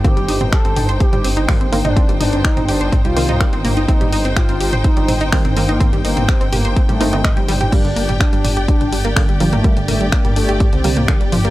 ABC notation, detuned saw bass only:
X:1
M:4/4
L:1/16
Q:1/4=125
K:Cdor
V:1 name="Detuned saw bass" clef=bass
z G,,, G,,, G,,, z G,,, G,,, G,,, z G,,, G,,, G,,, z G,,, G,,, G,,, | z G,,, G,,, G,,, z G,,, G,,, G,,, z C,, C,, C,, z G,,, G,,, G,,, | z G,,, G,,, G,,, z G,,, G,,, G,,, z G,,, G,,, G,,, z G,,, G,,, G,,, | z G,,, G,,, G,,, z G,,, G,,, G,,, z G,,, G,,, G,,, z G,,, G,,, G,,, |
z G,,, G,,, G,,, z G,,, G,,, G,,, z G,,, G,,, G,,, z G,,, G,,, G,,, | z G,,, G,,, G,,, z G,,, G,,, G,,, z C,, C,, C,, z G,,, G,,, G,,, |]